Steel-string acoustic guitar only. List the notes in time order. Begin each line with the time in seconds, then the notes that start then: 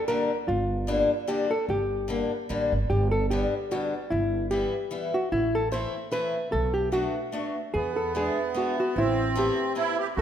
0.08 D3 G3 A#3 D4
0.87 D3 G3 A#3 D4
1.27 D3 G3 A#3 D4
2.08 D3 G3 A#3 D4
2.49 D3 G3 A#3 D4
3.31 D3 G3 B3 D4
3.71 D3 G3 B3 D4
4.51 E3 G3 B3 E4
4.91 E3 G3 B3 E4
5.72 E3 A3 C4 E4
6.11 E3 A3 C4 E4
6.92 A3 B3 D4 F#4
7.32 A3 B3 D4 F#4
8.15 G#3 B3 D4 E4
8.54 G#3 B3 D4 E4
9.35 A3 B3 C4 E4
9.75 A3 B3 C4 E4